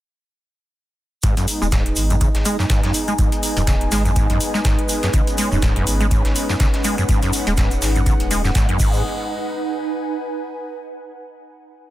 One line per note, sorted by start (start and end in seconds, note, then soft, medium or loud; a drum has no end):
1.23 1.34 G#1 medium
1.23 1.35 G#2 medium
1.23 8.76 G#3 medium
1.23 8.76 B3 medium
1.23 8.78 D#4 medium
1.23 5.10 D#4 medium
1.23 kick loud
1.23 closed hi-hat medium
1.23 shaker soft
1.23 shaker medium
1.37 1.46 F#2 loud
1.37 closed hi-hat soft
1.37 closed hi-hat medium
1.37 shaker soft
1.48 open hi-hat loud
1.48 shaker medium
1.58 1.93 D#1 medium
1.58 1.67 G#3 medium
1.58 6.15 G#5 medium
1.58 shaker soft
1.71 1.84 G#2 medium
1.71 8.79 B4 medium
1.71 kick loud
1.71 snare loud
1.71 closed hi-hat medium
1.71 shaker medium
1.86 closed hi-hat medium
1.96 2.30 G#1 medium
1.96 open hi-hat loud
1.96 shaker medium
2.10 2.16 F#2 medium
2.10 closed hi-hat soft
2.10 shaker soft
2.21 2.29 C#3 medium
2.21 kick loud
2.21 closed hi-hat medium
2.21 shaker medium
2.21 shaker soft
2.35 2.43 G#1 loud
2.35 snare soft
2.35 closed hi-hat medium
2.45 2.57 G#3 medium
2.45 open hi-hat loud
2.45 shaker medium
2.59 2.65 F#2 loud
2.59 snare soft
2.59 shaker soft
2.70 2.80 G#1 medium
2.70 2.81 G#2 loud
2.70 kick loud
2.70 snare loud
2.70 closed hi-hat medium
2.70 shaker medium
2.70 shaker soft
2.83 2.92 F#2 loud
2.83 snare soft
2.83 closed hi-hat soft
2.94 open hi-hat loud
2.94 shaker medium
3.08 3.14 G#3 medium
3.08 closed hi-hat soft
3.08 shaker soft
3.19 3.29 G#1 loud
3.19 3.30 G#2 medium
3.19 kick loud
3.19 closed hi-hat medium
3.19 shaker medium
3.32 closed hi-hat soft
3.32 closed hi-hat medium
3.32 shaker soft
3.43 open hi-hat loud
3.43 shaker medium
3.57 3.88 D#1 medium
3.57 3.63 F#2 medium
3.57 closed hi-hat soft
3.57 shaker soft
3.67 3.75 C#3 medium
3.67 kick loud
3.67 snare loud
3.67 closed hi-hat medium
3.67 shaker medium
3.81 closed hi-hat medium
3.92 4.25 G#1 medium
3.92 4.03 G#3 medium
3.92 snare medium
3.92 open hi-hat loud
3.92 shaker medium
4.05 4.11 F#2 loud
4.05 closed hi-hat soft
4.05 shaker soft
4.16 4.27 G#2 loud
4.16 kick loud
4.16 closed hi-hat medium
4.16 shaker soft
4.16 shaker medium
4.30 4.38 G#1 loud
4.30 4.39 F#2 loud
4.30 closed hi-hat soft
4.30 closed hi-hat medium
4.40 open hi-hat loud
4.40 shaker medium
4.54 4.60 G#3 medium
4.54 snare soft
4.54 shaker soft
4.65 4.75 G#1 medium
4.65 4.76 G#2 medium
4.65 kick loud
4.65 snare loud
4.65 closed hi-hat medium
4.65 shaker medium
4.79 closed hi-hat soft
4.89 open hi-hat loud
4.89 shaker medium
5.03 5.09 F#2 medium
5.03 snare medium
5.03 closed hi-hat soft
5.03 shaker soft
5.14 5.24 G#1 loud
5.14 5.21 C#3 medium
5.14 8.76 C#4 medium
5.14 kick loud
5.14 closed hi-hat medium
5.14 shaker medium
5.27 closed hi-hat soft
5.27 shaker soft
5.38 5.49 G#3 medium
5.38 open hi-hat loud
5.38 shaker loud
5.38 shaker medium
5.52 5.83 D#1 medium
5.52 5.58 F#2 loud
5.52 shaker soft
5.62 5.74 G#2 loud
5.62 kick loud
5.62 snare loud
5.62 closed hi-hat medium
5.62 shaker medium
5.76 5.85 F#2 loud
5.76 closed hi-hat soft
5.87 6.20 G#1 medium
5.87 open hi-hat loud
5.87 shaker medium
6.00 6.06 G#3 medium
6.00 8.80 F#5 medium
6.00 closed hi-hat soft
6.00 shaker soft
6.11 6.23 G#2 medium
6.11 kick loud
6.11 closed hi-hat medium
6.11 shaker medium
6.25 6.33 G#1 loud
6.25 snare soft
6.25 closed hi-hat soft
6.36 open hi-hat loud
6.36 shaker medium
6.49 6.55 F#2 medium
6.49 snare soft
6.49 shaker soft
6.60 6.71 G#1 medium
6.60 6.68 C#3 medium
6.60 kick loud
6.60 snare loud
6.60 closed hi-hat medium
6.60 shaker medium
6.60 shaker soft
6.74 snare soft
6.74 closed hi-hat soft
6.84 6.96 G#3 medium
6.84 open hi-hat loud
6.84 shaker loud
6.84 shaker medium
6.98 7.04 F#2 loud
6.98 closed hi-hat soft
6.98 shaker soft
7.09 7.19 G#1 loud
7.09 7.20 G#2 loud
7.09 kick loud
7.09 closed hi-hat medium
7.09 shaker medium
7.22 7.31 F#2 loud
7.22 closed hi-hat soft
7.22 shaker soft
7.33 open hi-hat loud
7.33 shaker medium
7.46 7.78 D#1 medium
7.46 7.53 G#3 medium
7.46 closed hi-hat soft
7.46 shaker soft
7.57 7.69 G#2 medium
7.57 kick loud
7.57 snare loud
7.57 closed hi-hat medium
7.57 shaker medium
7.71 closed hi-hat soft
7.71 shaker soft
7.82 8.15 G#1 medium
7.82 snare medium
7.82 open hi-hat loud
7.82 shaker medium
7.82 shaker loud
7.95 8.02 F#2 medium
7.95 closed hi-hat soft
7.95 shaker soft
8.06 8.14 C#3 medium
8.06 kick loud
8.06 closed hi-hat medium
8.06 shaker medium
8.20 8.51 D#1 medium
8.20 closed hi-hat soft
8.31 8.42 G#3 medium
8.31 open hi-hat loud
8.31 shaker medium
8.44 8.50 F#2 loud
8.44 snare soft
8.44 shaker soft
8.55 8.66 G#1 loud
8.55 8.66 G#2 loud
8.55 kick loud
8.55 snare loud
8.55 closed hi-hat medium
8.55 shaker medium
8.69 8.78 F#2 loud
8.69 closed hi-hat soft
8.79 9.02 G#1 loud
8.79 9.02 G#2 medium
8.79 9.02 G#3 medium
8.79 10.71 D#4 medium
8.79 9.02 G#4 medium
8.79 9.02 B4 medium
8.79 9.02 D#5 medium
8.79 kick loud
8.79 crash medium
8.79 shaker medium
8.88 10.71 B4 medium
8.93 shaker soft
9.20 10.95 G#5 medium